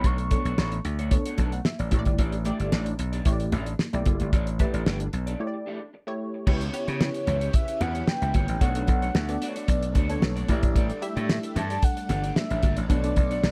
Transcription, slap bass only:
0.04 B1
0.45 B1
0.58 A1
0.85 D2
1.38 B1
1.79 A1
1.92 A1
2.06 G1
2.18 A1
2.60 G1
2.72 A1
2.99 B1
3.26 A1
3.52 A1
3.94 B1
4.06 F#1
4.21 G1
4.33 A1
4.74 A1
4.86 G1
5.13 B1
6.47 C#2
6.88 C#3
7.27 C#2
7.81 E2
8.22 C#2
8.35 G1
8.49 A1
8.61 B1
8.88 B1
9.15 D2
9.68 B1
9.95 D2
10.22 B1
10.49 A1
11.17 A2
11.56 G2
12.10 G1
12.51 A1
12.63 G1
12.77 A1
12.90 B1
13.17 B1
13.43 B1

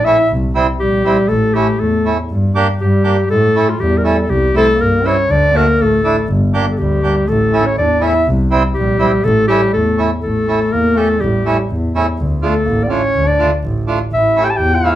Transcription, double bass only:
0.29 C2
0.80 A#1
1.30 A1
1.80 E2
2.30 G2
2.80 G2
3.30 A2
3.80 E2
4.29 C2
4.80 G2
5.29 D2
5.79 A1
6.29 G1
6.78 D2
7.29 A1
7.77 E2
8.26 C2
8.76 A#1
9.24 A1
9.74 E2
10.23 A1
10.72 E2
11.21 A1
11.70 E2
12.19 D2
12.67 A1
13.16 D2
13.63 A1
14.12 A1
14.60 E2

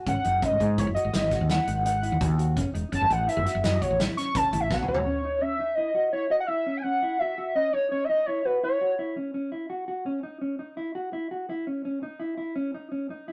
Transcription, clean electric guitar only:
0.06 C#4
0.24 D#4
0.42 C#4
0.61 D#4
0.78 E4
0.96 F#4
1.14 E4
1.32 F#4
1.50 E4
1.68 D#4
1.85 D#4
2.03 E4
2.20 F#4
2.38 F#4
2.56 C#4
2.74 D#4
2.92 C#4
3.10 D#4
3.28 E4
3.46 F#4
3.64 E4
3.81 F#4
3.99 E4
4.18 C#4
4.35 C#4
4.53 E4
4.71 F#4
4.89 F#4
5.06 C#4
5.25 D#4
5.42 C#4
5.60 D#4
5.78 E4
5.95 F#4
6.13 E4
6.30 F#4
6.48 E4
6.66 C#4
6.84 C#4
7.02 E4
7.21 F#4
7.38 F#4
7.55 C#4
7.74 D#4
7.92 C#4
8.09 D#4
8.28 E4
8.45 F#4
8.63 E4
8.81 F#4
8.99 E4
9.17 C#4
9.34 C#4
9.52 E4
9.70 F#4
9.88 F#4
10.06 C#4
10.23 D#4
10.41 C#4
10.59 D#4
10.77 E4
10.95 F#4
11.13 E4
11.31 F#4
11.50 E4
11.67 C#4
11.85 C#4
12.03 D#4
12.20 E4
12.38 E4
12.56 C#4
12.74 D#4
12.92 C#4
13.10 D#4
13.28 E4

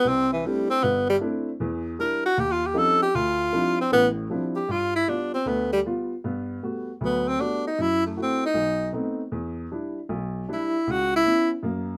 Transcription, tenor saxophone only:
0.08 C4
0.33 E3
0.46 G3
0.70 C4
0.84 B3
1.09 G3
2.00 A#4
2.26 F#4
2.40 G4
2.52 F4
2.66 G4
2.79 A4
3.02 G4
3.15 F4
3.81 C4
3.93 B3
4.56 G4
4.71 F4
4.96 E4
5.09 D4
5.34 C4
5.48 B3
5.73 G3
7.05 B3
7.28 C4
7.41 D4
7.67 D#4
7.81 E4
8.07 A3
8.22 C4
8.46 D#4
10.53 E4
10.91 F#4
11.16 E4

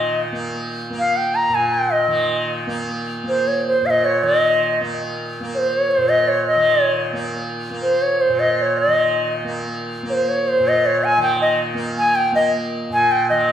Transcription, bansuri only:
Already playing: D#5
0.99 F5
1.17 G5
1.35 A#5
1.55 G#5
1.74 G5
1.92 D#5
3.29 C5
3.48 C#5
3.67 C5
3.86 F5
3.90 D#5
4.05 C#5
4.24 D#5
5.55 C5 C#5
5.73 C#5
5.91 C5
6.09 D#5
6.28 C#5
6.47 D#5
6.82 C#5
7.82 C5
8.02 C#5
8.21 C5
8.40 D#5
8.53 D#5
8.58 C#5 D#5
8.78 D#5
10.10 C5 C#5
10.29 C#5
10.48 C5
10.68 D#5
10.86 C#5
11.04 G#5
11.22 G5
11.42 D#5
11.98 G#5
12.16 G5
12.35 D#5
12.93 G#5
13.12 G5
13.30 D#5

